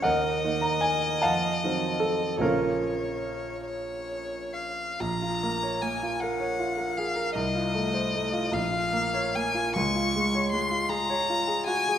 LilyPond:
<<
  \new Staff \with { instrumentName = "Violin" } { \time 6/8 \key bes \minor \tempo 4. = 50 ees''2. | des''4. des''4 f''8 | bes''4 aes''8 ges''4 f''8 | ees''4. f''4 aes''8 |
des'''4 c'''8 bes''4 aes''8 | }
  \new Staff \with { instrumentName = "Grand piano" } { \time 6/8 \key bes \minor << { <bes' ees'' ges''>8. bes''16 aes''8 <f'' ges'' a''>4 a'8 | <des' f' bes'>2~ <des' f' bes'>8 r8 | r2. | r2. |
r2. | } \\ { ees,8 <ees bes ees'>4 f,8 <ees ges c'>4 | <bes,, des f bes>2. | bes,,16 f'16 bes16 des''16 bes16 f'16 bes'16 des''16 f'16 bes'16 aes'16 bes'16 | c,16 f'16 a16 c''16 a16 f'16 bes,,16 f'16 bes16 des''16 bes16 f'16 |
des,16 f'16 aes16 des''16 aes16 f'16 aes'16 des''16 f'16 aes'16 ges'16 aes'16 | } >> }
>>